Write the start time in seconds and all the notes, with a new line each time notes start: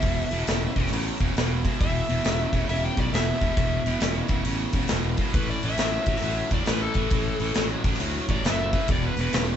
Already playing: E5
0.02 E1 E2 B2, kick, open hi-hat
0.31 E1 E2 B2, open hi-hat
0.47 E1 E2 C#3, snare, open hi-hat
0.76 E1 E2 C#3, kick, open hi-hat
0.87 A1, snare
0.92 E2 C#3, open hi-hat
1.20 E1 E2 C#3, kick, open hi-hat
1.36 E1 E2 B2, snare, open hi-hat
1.64 E2 B2, kick, open hi-hat
1.81 E1 E2 B2 E5, kick, open hi-hat
2.09 E1 E2 B2, open hi-hat
2.25 E1 E2 C#3, snare, open hi-hat
2.53 E1 E2 C#3, kick, open hi-hat
2.69 E1 E2 C#3 E5, open hi-hat
2.84 G5
2.97 B1 E2 C#3 D5, kick, open hi-hat
3.12 E1 E2 B2 E5, snare, open hi-hat
3.40 E1 E2 B2, kick, open hi-hat
3.56 E1 E2 B2, kick, open hi-hat
3.84 E1 E2 B2, open hi-hat
4.00 E1 E2 C#3, snare, open hi-hat
4.28 E1 E2 C#3, kick, open hi-hat
4.45 A1 E2 C#3, open hi-hat
4.73 E1 E2 C#3, kick, open hi-hat
4.88 E1 E2 B2, snare, open hi-hat
5.17 E2 B2, kick, open hi-hat
5.34 A1 A2 E3 B4, kick, open hi-hat
5.50 D5
5.63 A1 A2 E3 E5, open hi-hat
5.78 A1 A2 F#3, snare, open hi-hat
6.06 A1 A2 F#3, kick, open hi-hat
6.16 snare
6.22 A1 A2 F#3, open hi-hat
6.51 E2 A2 F#3 D5, kick, open hi-hat
6.66 A1 A2 E3 B4, snare, open hi-hat
6.81 A4
6.94 A1 A2 E3, kick, open hi-hat
7.10 A1 A2 E3, kick, open hi-hat
7.40 A1 A2 E3, open hi-hat
7.54 A1 A2 F#3, snare, open hi-hat
7.84 A1 A2 F#3, kick, open hi-hat
7.94 snare
7.99 D2 A2 F#3, open hi-hat
8.28 A1 A2 F#3 D5, kick, open hi-hat
8.43 F#1 A2 E3 E5, snare, open hi-hat
8.73 A2 E3, kick, open hi-hat
8.88 E1 E2 B2 D5, kick, open hi-hat
9.07 B4
9.16 E1 E2 B2, open hi-hat
9.21 B4
9.33 E1 E2 C#3, snare, open hi-hat